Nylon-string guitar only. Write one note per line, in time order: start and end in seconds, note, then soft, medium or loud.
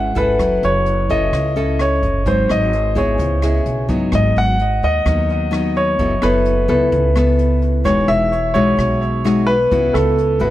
0.00 0.37 G#3 medium
0.00 0.12 C#4 medium
0.00 0.12 E4 medium
0.00 0.12 B4 medium
0.15 1.05 C#4 medium
0.15 1.05 E4 medium
0.15 1.06 A4 medium
0.40 1.30 F#3 soft
1.10 1.52 C#4 medium
1.10 1.52 E4 medium
1.10 1.53 A4 medium
1.33 2.24 C#3 medium
1.56 2.22 C#4 medium
1.56 2.22 E4 medium
1.56 2.22 A4 medium
2.26 3.17 G#2 soft
2.26 2.72 F#3 medium
2.26 2.72 C4 soft
2.26 2.72 D#4 medium
2.95 3.38 B3 medium
2.95 3.39 E4 medium
2.95 3.39 G#4 medium
3.18 4.10 C#3 medium
3.42 3.85 B3 soft
3.42 3.86 E4 medium
3.42 3.86 G#4 medium
3.89 4.57 F#3 medium
3.89 4.57 B3 medium
3.89 4.57 D#4 medium
4.12 5.03 G#2 medium
5.05 5.96 D#3 medium
5.05 5.49 F#3 soft
5.05 5.49 B3 medium
5.05 5.49 D#4 medium
5.51 5.96 F#3 medium
5.51 5.97 B3 medium
5.51 5.97 D#4 medium
5.99 6.90 F#3 medium
5.99 6.13 B3 soft
5.99 6.13 E4 soft
5.99 6.13 A4 medium
6.22 6.65 B3 medium
6.22 6.65 E4 medium
6.22 6.65 A4 medium
6.68 7.12 B3 medium
6.68 7.12 E4 medium
6.68 7.12 A4 medium
6.92 7.83 C#3 soft
7.16 7.82 B3 medium
7.16 7.82 E4 medium
7.16 7.82 A4 medium
7.84 8.76 E3 medium
7.84 8.31 G#3 medium
7.84 8.32 D#4 medium
7.84 8.32 F#4 medium
8.54 9.21 G#3 medium
8.54 9.21 D#4 medium
8.54 9.22 F#4 medium
8.77 9.69 B2 soft
9.24 9.55 G#3 medium
9.24 9.55 D#4 medium
9.24 9.55 F#4 medium
9.71 10.50 C#3 medium
9.71 10.18 B3 medium
9.71 10.18 E4 medium
9.71 10.18 F#4 medium
10.40 10.50 B3 medium
10.40 10.50 E4 medium
10.40 10.50 F#4 medium